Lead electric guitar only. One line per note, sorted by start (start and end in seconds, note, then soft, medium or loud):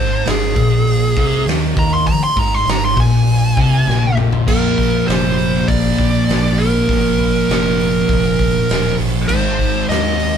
0.00 0.27 C5 loud
0.29 1.45 G#4 loud
1.79 1.93 A#5 loud
1.94 2.07 C6 loud
2.08 2.22 A#5 loud
2.24 2.39 C6 medium
2.39 2.55 A#5 loud
2.55 2.70 C6 loud
2.70 2.83 A#5 loud
2.85 2.98 C6 medium
3.00 4.16 G#5 loud
4.48 5.07 A#4 medium
5.08 5.70 C5 loud
5.68 6.61 D5 loud
6.59 8.95 A#4 medium
9.28 9.84 C5 loud
9.89 10.38 D#5 loud